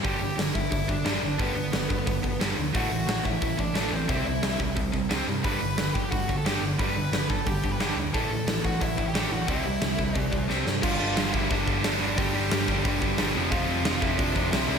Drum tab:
CC |--------|--------|--------|--------|
HH |o-o-o-o-|o-o-o-o-|o-o-o-o-|o-o-o-o-|
SD |--o---o-|--o---o-|--o---o-|--o---o-|
BD |o--ooo--|o--ooo--|o--ooo--|o--ooo--|

CC |--------|--------|--------|--------|
HH |o-o-o-o-|o-o-o-o-|o-o-o-o-|o-o-o---|
SD |--o---o-|--o---o-|--o---o-|--o---oo|
BD |o--ooo--|o--ooo--|o--ooo--|o--ooo--|

CC |x-------|--------|--------|
HH |--o-o-o-|o-o-o-o-|o-o-o-o-|
SD |--o---o-|--o---o-|--o---o-|
BD |o--ooo--|o--ooo--|o--ooo--|